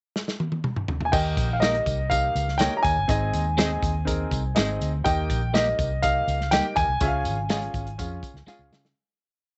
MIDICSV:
0, 0, Header, 1, 7, 480
1, 0, Start_track
1, 0, Tempo, 489796
1, 1106, Time_signature, 4, 2, 24, 8
1, 9387, End_track
2, 0, Start_track
2, 0, Title_t, "Grand piano"
2, 0, Program_c, 0, 0
2, 1031, Note_on_c, 0, 80, 64
2, 1098, Note_on_c, 0, 79, 75
2, 1103, Note_off_c, 0, 80, 0
2, 1501, Note_on_c, 0, 77, 52
2, 1526, Note_off_c, 0, 79, 0
2, 1569, Note_on_c, 0, 75, 74
2, 1578, Note_off_c, 0, 77, 0
2, 2054, Note_on_c, 0, 77, 78
2, 2073, Note_off_c, 0, 75, 0
2, 2507, Note_off_c, 0, 77, 0
2, 2525, Note_on_c, 0, 79, 88
2, 2695, Note_off_c, 0, 79, 0
2, 2715, Note_on_c, 0, 82, 76
2, 2769, Note_on_c, 0, 80, 99
2, 2786, Note_off_c, 0, 82, 0
2, 4662, Note_off_c, 0, 80, 0
2, 4944, Note_on_c, 0, 79, 88
2, 5394, Note_off_c, 0, 79, 0
2, 5431, Note_on_c, 0, 75, 71
2, 5904, Note_on_c, 0, 77, 81
2, 5926, Note_off_c, 0, 75, 0
2, 6354, Note_off_c, 0, 77, 0
2, 6382, Note_on_c, 0, 79, 97
2, 6623, Note_on_c, 0, 80, 99
2, 6634, Note_off_c, 0, 79, 0
2, 8506, Note_off_c, 0, 80, 0
2, 9387, End_track
3, 0, Start_track
3, 0, Title_t, "Upright piano"
3, 0, Program_c, 1, 0
3, 1099, Note_on_c, 1, 63, 87
3, 1100, Note_on_c, 1, 58, 89
3, 1104, Note_on_c, 1, 67, 77
3, 1105, Note_on_c, 1, 51, 64
3, 1111, Note_on_c, 1, 75, 103
3, 1441, Note_off_c, 1, 58, 0
3, 1441, Note_off_c, 1, 63, 0
3, 1443, Note_off_c, 1, 67, 0
3, 1447, Note_off_c, 1, 75, 0
3, 1578, Note_on_c, 1, 58, 64
3, 1578, Note_on_c, 1, 63, 58
3, 1588, Note_on_c, 1, 75, 69
3, 1589, Note_on_c, 1, 67, 61
3, 1787, Note_off_c, 1, 51, 0
3, 1921, Note_off_c, 1, 58, 0
3, 1921, Note_off_c, 1, 63, 0
3, 1926, Note_off_c, 1, 67, 0
3, 1926, Note_off_c, 1, 75, 0
3, 2060, Note_on_c, 1, 58, 60
3, 2065, Note_on_c, 1, 63, 56
3, 2070, Note_on_c, 1, 67, 56
3, 2072, Note_on_c, 1, 75, 58
3, 2402, Note_off_c, 1, 58, 0
3, 2404, Note_off_c, 1, 63, 0
3, 2407, Note_off_c, 1, 67, 0
3, 2408, Note_off_c, 1, 75, 0
3, 2543, Note_on_c, 1, 58, 70
3, 2547, Note_on_c, 1, 63, 70
3, 2549, Note_on_c, 1, 67, 63
3, 2552, Note_on_c, 1, 73, 76
3, 2884, Note_off_c, 1, 58, 0
3, 2886, Note_off_c, 1, 63, 0
3, 2887, Note_off_c, 1, 67, 0
3, 2888, Note_off_c, 1, 73, 0
3, 3017, Note_on_c, 1, 60, 89
3, 3022, Note_on_c, 1, 44, 61
3, 3023, Note_on_c, 1, 63, 83
3, 3025, Note_on_c, 1, 68, 87
3, 3033, Note_on_c, 1, 75, 99
3, 3361, Note_off_c, 1, 60, 0
3, 3364, Note_off_c, 1, 63, 0
3, 3365, Note_off_c, 1, 68, 0
3, 3369, Note_off_c, 1, 75, 0
3, 3510, Note_on_c, 1, 60, 72
3, 3511, Note_on_c, 1, 63, 69
3, 3516, Note_on_c, 1, 68, 79
3, 3518, Note_on_c, 1, 75, 83
3, 3707, Note_off_c, 1, 44, 0
3, 3848, Note_off_c, 1, 60, 0
3, 3848, Note_off_c, 1, 63, 0
3, 3851, Note_off_c, 1, 68, 0
3, 3852, Note_off_c, 1, 75, 0
3, 3970, Note_on_c, 1, 60, 80
3, 3981, Note_on_c, 1, 63, 66
3, 3984, Note_on_c, 1, 70, 77
3, 3985, Note_on_c, 1, 68, 69
3, 4318, Note_off_c, 1, 60, 0
3, 4323, Note_off_c, 1, 63, 0
3, 4325, Note_off_c, 1, 70, 0
3, 4326, Note_off_c, 1, 68, 0
3, 4457, Note_on_c, 1, 58, 65
3, 4457, Note_on_c, 1, 63, 75
3, 4464, Note_on_c, 1, 68, 72
3, 4466, Note_on_c, 1, 75, 95
3, 4516, Note_on_c, 1, 60, 88
3, 4521, Note_off_c, 1, 58, 0
3, 4802, Note_off_c, 1, 63, 0
3, 4805, Note_off_c, 1, 68, 0
3, 4806, Note_off_c, 1, 75, 0
3, 4831, Note_off_c, 1, 60, 0
3, 4941, Note_on_c, 1, 58, 91
3, 4942, Note_on_c, 1, 63, 91
3, 4946, Note_on_c, 1, 67, 89
3, 4947, Note_on_c, 1, 51, 62
3, 4952, Note_on_c, 1, 75, 105
3, 5284, Note_off_c, 1, 58, 0
3, 5284, Note_off_c, 1, 63, 0
3, 5287, Note_off_c, 1, 67, 0
3, 5289, Note_off_c, 1, 75, 0
3, 5419, Note_on_c, 1, 58, 67
3, 5425, Note_on_c, 1, 63, 62
3, 5426, Note_on_c, 1, 67, 61
3, 5430, Note_on_c, 1, 75, 76
3, 5630, Note_off_c, 1, 51, 0
3, 5763, Note_off_c, 1, 58, 0
3, 5766, Note_off_c, 1, 63, 0
3, 5766, Note_off_c, 1, 67, 0
3, 5768, Note_off_c, 1, 75, 0
3, 5906, Note_on_c, 1, 58, 66
3, 5906, Note_on_c, 1, 63, 59
3, 5909, Note_on_c, 1, 67, 54
3, 5914, Note_on_c, 1, 75, 73
3, 6247, Note_off_c, 1, 58, 0
3, 6247, Note_off_c, 1, 63, 0
3, 6248, Note_off_c, 1, 67, 0
3, 6250, Note_off_c, 1, 75, 0
3, 6389, Note_on_c, 1, 58, 75
3, 6397, Note_on_c, 1, 67, 68
3, 6398, Note_on_c, 1, 63, 68
3, 6402, Note_on_c, 1, 75, 72
3, 6728, Note_off_c, 1, 58, 0
3, 6732, Note_off_c, 1, 63, 0
3, 6732, Note_off_c, 1, 67, 0
3, 6734, Note_off_c, 1, 75, 0
3, 6865, Note_on_c, 1, 61, 92
3, 6871, Note_on_c, 1, 49, 61
3, 6873, Note_on_c, 1, 68, 87
3, 6874, Note_on_c, 1, 65, 83
3, 6879, Note_on_c, 1, 76, 85
3, 6932, Note_off_c, 1, 76, 0
3, 6932, Note_on_c, 1, 77, 107
3, 7206, Note_off_c, 1, 61, 0
3, 7210, Note_off_c, 1, 65, 0
3, 7210, Note_off_c, 1, 68, 0
3, 7239, Note_off_c, 1, 77, 0
3, 7348, Note_on_c, 1, 65, 70
3, 7349, Note_on_c, 1, 61, 75
3, 7355, Note_on_c, 1, 68, 80
3, 7364, Note_on_c, 1, 75, 64
3, 7415, Note_off_c, 1, 75, 0
3, 7418, Note_on_c, 1, 77, 85
3, 7551, Note_off_c, 1, 49, 0
3, 7687, Note_off_c, 1, 65, 0
3, 7688, Note_off_c, 1, 61, 0
3, 7690, Note_off_c, 1, 68, 0
3, 7722, Note_off_c, 1, 77, 0
3, 7822, Note_on_c, 1, 61, 71
3, 7834, Note_on_c, 1, 68, 58
3, 7835, Note_on_c, 1, 65, 65
3, 7835, Note_on_c, 1, 77, 82
3, 8163, Note_off_c, 1, 61, 0
3, 8169, Note_off_c, 1, 68, 0
3, 8170, Note_off_c, 1, 65, 0
3, 8170, Note_off_c, 1, 77, 0
3, 8303, Note_on_c, 1, 61, 79
3, 8306, Note_on_c, 1, 65, 82
3, 8310, Note_on_c, 1, 68, 75
3, 8315, Note_on_c, 1, 77, 96
3, 8644, Note_off_c, 1, 61, 0
3, 8645, Note_off_c, 1, 65, 0
3, 8647, Note_off_c, 1, 68, 0
3, 8649, Note_off_c, 1, 77, 0
3, 9387, End_track
4, 0, Start_track
4, 0, Title_t, "Clean electric guitar"
4, 0, Program_c, 2, 27
4, 1587, Note_on_c, 2, 58, 82
4, 1592, Note_on_c, 2, 63, 85
4, 1596, Note_on_c, 2, 67, 84
4, 1601, Note_on_c, 2, 70, 92
4, 1712, Note_off_c, 2, 58, 0
4, 1715, Note_off_c, 2, 63, 0
4, 1717, Note_off_c, 2, 67, 0
4, 1720, Note_off_c, 2, 70, 0
4, 2546, Note_on_c, 2, 58, 72
4, 2546, Note_on_c, 2, 63, 79
4, 2555, Note_on_c, 2, 67, 78
4, 2559, Note_on_c, 2, 70, 75
4, 2672, Note_off_c, 2, 58, 0
4, 2672, Note_off_c, 2, 63, 0
4, 2677, Note_off_c, 2, 67, 0
4, 2679, Note_off_c, 2, 70, 0
4, 3503, Note_on_c, 2, 56, 90
4, 3507, Note_on_c, 2, 60, 93
4, 3513, Note_on_c, 2, 63, 89
4, 3516, Note_on_c, 2, 68, 93
4, 3632, Note_off_c, 2, 56, 0
4, 3633, Note_off_c, 2, 60, 0
4, 3636, Note_off_c, 2, 63, 0
4, 3638, Note_off_c, 2, 68, 0
4, 4472, Note_on_c, 2, 56, 84
4, 4472, Note_on_c, 2, 60, 73
4, 4477, Note_on_c, 2, 63, 86
4, 4484, Note_on_c, 2, 68, 83
4, 4596, Note_off_c, 2, 56, 0
4, 4596, Note_off_c, 2, 60, 0
4, 4599, Note_off_c, 2, 63, 0
4, 4602, Note_off_c, 2, 68, 0
4, 5429, Note_on_c, 2, 55, 75
4, 5431, Note_on_c, 2, 58, 75
4, 5440, Note_on_c, 2, 63, 73
4, 5440, Note_on_c, 2, 67, 79
4, 5555, Note_off_c, 2, 55, 0
4, 5557, Note_off_c, 2, 58, 0
4, 5561, Note_off_c, 2, 63, 0
4, 5561, Note_off_c, 2, 67, 0
4, 6393, Note_on_c, 2, 55, 83
4, 6398, Note_on_c, 2, 58, 84
4, 6401, Note_on_c, 2, 63, 91
4, 6407, Note_on_c, 2, 67, 100
4, 6517, Note_off_c, 2, 55, 0
4, 6520, Note_off_c, 2, 58, 0
4, 6522, Note_off_c, 2, 63, 0
4, 6524, Note_off_c, 2, 67, 0
4, 7345, Note_on_c, 2, 56, 78
4, 7351, Note_on_c, 2, 61, 82
4, 7353, Note_on_c, 2, 65, 81
4, 7359, Note_on_c, 2, 68, 86
4, 7473, Note_off_c, 2, 56, 0
4, 7476, Note_off_c, 2, 61, 0
4, 7477, Note_off_c, 2, 65, 0
4, 7480, Note_off_c, 2, 68, 0
4, 8298, Note_on_c, 2, 56, 75
4, 8304, Note_on_c, 2, 61, 76
4, 8309, Note_on_c, 2, 65, 84
4, 8315, Note_on_c, 2, 68, 84
4, 8429, Note_off_c, 2, 56, 0
4, 8432, Note_off_c, 2, 61, 0
4, 8434, Note_off_c, 2, 65, 0
4, 8438, Note_off_c, 2, 68, 0
4, 9387, End_track
5, 0, Start_track
5, 0, Title_t, "Fingered electric bass"
5, 0, Program_c, 3, 33
5, 1109, Note_on_c, 3, 39, 96
5, 1316, Note_off_c, 3, 39, 0
5, 1344, Note_on_c, 3, 34, 76
5, 1760, Note_off_c, 3, 34, 0
5, 1823, Note_on_c, 3, 36, 88
5, 2240, Note_off_c, 3, 36, 0
5, 2306, Note_on_c, 3, 37, 88
5, 2618, Note_off_c, 3, 37, 0
5, 2789, Note_on_c, 3, 39, 83
5, 2892, Note_off_c, 3, 39, 0
5, 2908, Note_on_c, 3, 31, 81
5, 3012, Note_off_c, 3, 31, 0
5, 3028, Note_on_c, 3, 32, 100
5, 3236, Note_off_c, 3, 32, 0
5, 3270, Note_on_c, 3, 39, 92
5, 3685, Note_off_c, 3, 39, 0
5, 3751, Note_on_c, 3, 39, 84
5, 4166, Note_off_c, 3, 39, 0
5, 4225, Note_on_c, 3, 36, 87
5, 4435, Note_off_c, 3, 36, 0
5, 4476, Note_on_c, 3, 32, 90
5, 4681, Note_off_c, 3, 32, 0
5, 4716, Note_on_c, 3, 38, 85
5, 4921, Note_off_c, 3, 38, 0
5, 4953, Note_on_c, 3, 39, 89
5, 5159, Note_off_c, 3, 39, 0
5, 5189, Note_on_c, 3, 34, 88
5, 5605, Note_off_c, 3, 34, 0
5, 5670, Note_on_c, 3, 36, 83
5, 6085, Note_off_c, 3, 36, 0
5, 6150, Note_on_c, 3, 37, 89
5, 6462, Note_off_c, 3, 37, 0
5, 6629, Note_on_c, 3, 39, 81
5, 6734, Note_off_c, 3, 39, 0
5, 6745, Note_on_c, 3, 36, 77
5, 6851, Note_off_c, 3, 36, 0
5, 6870, Note_on_c, 3, 37, 88
5, 7100, Note_on_c, 3, 32, 92
5, 7114, Note_off_c, 3, 37, 0
5, 7519, Note_off_c, 3, 32, 0
5, 7586, Note_on_c, 3, 32, 83
5, 7795, Note_off_c, 3, 32, 0
5, 7828, Note_on_c, 3, 41, 95
5, 8036, Note_off_c, 3, 41, 0
5, 8172, Note_on_c, 3, 37, 72
5, 8283, Note_off_c, 3, 37, 0
5, 8418, Note_on_c, 3, 37, 71
5, 8526, Note_off_c, 3, 37, 0
5, 8541, Note_on_c, 3, 49, 85
5, 8751, Note_off_c, 3, 49, 0
5, 9387, End_track
6, 0, Start_track
6, 0, Title_t, "Muted fingered electric bass strokes"
6, 8064, Note_on_c, 9, 29, 50
6, 8162, Note_off_c, 9, 29, 0
6, 9387, End_track
7, 0, Start_track
7, 0, Title_t, "Drums"
7, 155, Note_on_c, 9, 38, 57
7, 253, Note_off_c, 9, 38, 0
7, 275, Note_on_c, 9, 38, 56
7, 373, Note_off_c, 9, 38, 0
7, 392, Note_on_c, 9, 48, 69
7, 490, Note_off_c, 9, 48, 0
7, 509, Note_on_c, 9, 48, 62
7, 607, Note_off_c, 9, 48, 0
7, 627, Note_on_c, 9, 47, 78
7, 725, Note_off_c, 9, 47, 0
7, 749, Note_on_c, 9, 45, 75
7, 847, Note_off_c, 9, 45, 0
7, 866, Note_on_c, 9, 43, 89
7, 964, Note_off_c, 9, 43, 0
7, 985, Note_on_c, 9, 43, 81
7, 1083, Note_off_c, 9, 43, 0
7, 1107, Note_on_c, 9, 36, 105
7, 1107, Note_on_c, 9, 49, 78
7, 1111, Note_on_c, 9, 54, 82
7, 1205, Note_off_c, 9, 36, 0
7, 1205, Note_off_c, 9, 49, 0
7, 1209, Note_off_c, 9, 54, 0
7, 1344, Note_on_c, 9, 36, 90
7, 1346, Note_on_c, 9, 42, 68
7, 1350, Note_on_c, 9, 54, 51
7, 1442, Note_off_c, 9, 36, 0
7, 1444, Note_off_c, 9, 42, 0
7, 1448, Note_off_c, 9, 54, 0
7, 1587, Note_on_c, 9, 42, 83
7, 1593, Note_on_c, 9, 54, 73
7, 1594, Note_on_c, 9, 38, 118
7, 1685, Note_off_c, 9, 42, 0
7, 1691, Note_off_c, 9, 54, 0
7, 1692, Note_off_c, 9, 38, 0
7, 1714, Note_on_c, 9, 42, 45
7, 1812, Note_off_c, 9, 42, 0
7, 1825, Note_on_c, 9, 36, 92
7, 1830, Note_on_c, 9, 54, 50
7, 1832, Note_on_c, 9, 42, 61
7, 1923, Note_off_c, 9, 36, 0
7, 1928, Note_off_c, 9, 54, 0
7, 1930, Note_off_c, 9, 42, 0
7, 2069, Note_on_c, 9, 36, 89
7, 2069, Note_on_c, 9, 42, 82
7, 2071, Note_on_c, 9, 54, 91
7, 2167, Note_off_c, 9, 36, 0
7, 2167, Note_off_c, 9, 42, 0
7, 2169, Note_off_c, 9, 54, 0
7, 2310, Note_on_c, 9, 42, 73
7, 2318, Note_on_c, 9, 54, 57
7, 2408, Note_off_c, 9, 42, 0
7, 2416, Note_off_c, 9, 54, 0
7, 2434, Note_on_c, 9, 38, 33
7, 2532, Note_off_c, 9, 38, 0
7, 2539, Note_on_c, 9, 42, 96
7, 2554, Note_on_c, 9, 38, 114
7, 2555, Note_on_c, 9, 54, 87
7, 2637, Note_off_c, 9, 42, 0
7, 2652, Note_off_c, 9, 38, 0
7, 2653, Note_off_c, 9, 54, 0
7, 2788, Note_on_c, 9, 36, 92
7, 2790, Note_on_c, 9, 42, 74
7, 2800, Note_on_c, 9, 54, 53
7, 2886, Note_off_c, 9, 36, 0
7, 2888, Note_off_c, 9, 42, 0
7, 2898, Note_off_c, 9, 54, 0
7, 3026, Note_on_c, 9, 42, 85
7, 3028, Note_on_c, 9, 36, 107
7, 3039, Note_on_c, 9, 54, 76
7, 3124, Note_off_c, 9, 42, 0
7, 3126, Note_off_c, 9, 36, 0
7, 3137, Note_off_c, 9, 54, 0
7, 3269, Note_on_c, 9, 42, 75
7, 3276, Note_on_c, 9, 54, 51
7, 3367, Note_off_c, 9, 42, 0
7, 3374, Note_off_c, 9, 54, 0
7, 3512, Note_on_c, 9, 42, 89
7, 3518, Note_on_c, 9, 38, 125
7, 3521, Note_on_c, 9, 54, 79
7, 3610, Note_off_c, 9, 42, 0
7, 3616, Note_off_c, 9, 38, 0
7, 3619, Note_off_c, 9, 54, 0
7, 3749, Note_on_c, 9, 36, 87
7, 3758, Note_on_c, 9, 42, 65
7, 3758, Note_on_c, 9, 54, 54
7, 3847, Note_off_c, 9, 36, 0
7, 3856, Note_off_c, 9, 42, 0
7, 3856, Note_off_c, 9, 54, 0
7, 3993, Note_on_c, 9, 36, 85
7, 3995, Note_on_c, 9, 54, 94
7, 3996, Note_on_c, 9, 42, 82
7, 4091, Note_off_c, 9, 36, 0
7, 4093, Note_off_c, 9, 54, 0
7, 4094, Note_off_c, 9, 42, 0
7, 4227, Note_on_c, 9, 36, 82
7, 4236, Note_on_c, 9, 42, 77
7, 4247, Note_on_c, 9, 54, 53
7, 4325, Note_off_c, 9, 36, 0
7, 4334, Note_off_c, 9, 42, 0
7, 4345, Note_off_c, 9, 54, 0
7, 4467, Note_on_c, 9, 42, 105
7, 4483, Note_on_c, 9, 38, 104
7, 4483, Note_on_c, 9, 54, 93
7, 4565, Note_off_c, 9, 42, 0
7, 4581, Note_off_c, 9, 38, 0
7, 4581, Note_off_c, 9, 54, 0
7, 4716, Note_on_c, 9, 54, 58
7, 4721, Note_on_c, 9, 42, 73
7, 4814, Note_off_c, 9, 54, 0
7, 4819, Note_off_c, 9, 42, 0
7, 4955, Note_on_c, 9, 36, 108
7, 4956, Note_on_c, 9, 42, 82
7, 4962, Note_on_c, 9, 54, 90
7, 5053, Note_off_c, 9, 36, 0
7, 5054, Note_off_c, 9, 42, 0
7, 5060, Note_off_c, 9, 54, 0
7, 5192, Note_on_c, 9, 36, 86
7, 5197, Note_on_c, 9, 42, 74
7, 5201, Note_on_c, 9, 54, 51
7, 5290, Note_off_c, 9, 36, 0
7, 5295, Note_off_c, 9, 42, 0
7, 5299, Note_off_c, 9, 54, 0
7, 5438, Note_on_c, 9, 42, 93
7, 5439, Note_on_c, 9, 54, 86
7, 5445, Note_on_c, 9, 38, 122
7, 5536, Note_off_c, 9, 42, 0
7, 5537, Note_off_c, 9, 54, 0
7, 5543, Note_off_c, 9, 38, 0
7, 5672, Note_on_c, 9, 36, 96
7, 5675, Note_on_c, 9, 54, 49
7, 5681, Note_on_c, 9, 42, 65
7, 5770, Note_off_c, 9, 36, 0
7, 5773, Note_off_c, 9, 54, 0
7, 5779, Note_off_c, 9, 42, 0
7, 5908, Note_on_c, 9, 54, 96
7, 5916, Note_on_c, 9, 42, 83
7, 5917, Note_on_c, 9, 36, 84
7, 6006, Note_off_c, 9, 54, 0
7, 6014, Note_off_c, 9, 42, 0
7, 6015, Note_off_c, 9, 36, 0
7, 6155, Note_on_c, 9, 54, 51
7, 6161, Note_on_c, 9, 42, 71
7, 6253, Note_off_c, 9, 54, 0
7, 6259, Note_off_c, 9, 42, 0
7, 6281, Note_on_c, 9, 38, 34
7, 6379, Note_off_c, 9, 38, 0
7, 6387, Note_on_c, 9, 42, 111
7, 6387, Note_on_c, 9, 54, 89
7, 6402, Note_on_c, 9, 38, 111
7, 6485, Note_off_c, 9, 42, 0
7, 6485, Note_off_c, 9, 54, 0
7, 6500, Note_off_c, 9, 38, 0
7, 6626, Note_on_c, 9, 54, 58
7, 6631, Note_on_c, 9, 36, 96
7, 6634, Note_on_c, 9, 42, 72
7, 6724, Note_off_c, 9, 54, 0
7, 6729, Note_off_c, 9, 36, 0
7, 6732, Note_off_c, 9, 42, 0
7, 6865, Note_on_c, 9, 42, 84
7, 6867, Note_on_c, 9, 54, 80
7, 6870, Note_on_c, 9, 36, 108
7, 6963, Note_off_c, 9, 42, 0
7, 6965, Note_off_c, 9, 54, 0
7, 6968, Note_off_c, 9, 36, 0
7, 7106, Note_on_c, 9, 54, 57
7, 7108, Note_on_c, 9, 42, 78
7, 7204, Note_off_c, 9, 54, 0
7, 7206, Note_off_c, 9, 42, 0
7, 7345, Note_on_c, 9, 42, 93
7, 7352, Note_on_c, 9, 38, 107
7, 7355, Note_on_c, 9, 54, 77
7, 7443, Note_off_c, 9, 42, 0
7, 7450, Note_off_c, 9, 38, 0
7, 7453, Note_off_c, 9, 54, 0
7, 7470, Note_on_c, 9, 42, 49
7, 7568, Note_off_c, 9, 42, 0
7, 7586, Note_on_c, 9, 36, 88
7, 7591, Note_on_c, 9, 42, 61
7, 7597, Note_on_c, 9, 54, 54
7, 7684, Note_off_c, 9, 36, 0
7, 7689, Note_off_c, 9, 42, 0
7, 7695, Note_off_c, 9, 54, 0
7, 7710, Note_on_c, 9, 42, 52
7, 7808, Note_off_c, 9, 42, 0
7, 7830, Note_on_c, 9, 36, 91
7, 7832, Note_on_c, 9, 42, 76
7, 7832, Note_on_c, 9, 54, 89
7, 7928, Note_off_c, 9, 36, 0
7, 7930, Note_off_c, 9, 42, 0
7, 7930, Note_off_c, 9, 54, 0
7, 8063, Note_on_c, 9, 36, 75
7, 8070, Note_on_c, 9, 54, 51
7, 8073, Note_on_c, 9, 42, 67
7, 8161, Note_off_c, 9, 36, 0
7, 8168, Note_off_c, 9, 54, 0
7, 8171, Note_off_c, 9, 42, 0
7, 8192, Note_on_c, 9, 38, 35
7, 8290, Note_off_c, 9, 38, 0
7, 8310, Note_on_c, 9, 54, 88
7, 8313, Note_on_c, 9, 38, 52
7, 8408, Note_off_c, 9, 54, 0
7, 8411, Note_off_c, 9, 38, 0
7, 8550, Note_on_c, 9, 54, 57
7, 8553, Note_on_c, 9, 38, 88
7, 8648, Note_off_c, 9, 54, 0
7, 8651, Note_off_c, 9, 38, 0
7, 8671, Note_on_c, 9, 38, 75
7, 8769, Note_off_c, 9, 38, 0
7, 9387, End_track
0, 0, End_of_file